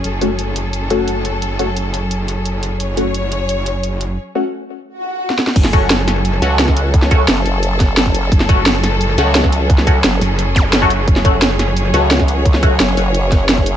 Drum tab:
CC |----------------|----------------|----------------|----------------|
HH |x-x-x-x-x-x-x-x-|x-x-x-x-x-x-x-x-|x-x-x-x-x-x-x-x-|----------------|
SD |----------------|----------------|----------------|-------------ooo|
BD |----------------|----------------|----------------|----------------|

CC |x---------------|----------------|----------------|----------------|
HH |x-x-x-x-x-x-x-x-|x-x-x-o-x-x-x-x-|x-x-x-x-x-x-x-x-|x-x-x-o-x-x-x-x-|
SD |-o--o-o-----oo--|-o--o-----o-o---|-o--o-o-----oo--|-o--o-----o-o---|
BD |o-o----------o--|o-o-------o--o--|o-o----------o--|o-o-------o--o--|

CC |----------------|----------------|
HH |x-x-x-x-x-x-x-x-|x-x-x-o-x-x-x-x-|
SD |-o--o-o-----oo--|-o--o-----o-o---|
BD |o-o----------o--|o-o-------o--o--|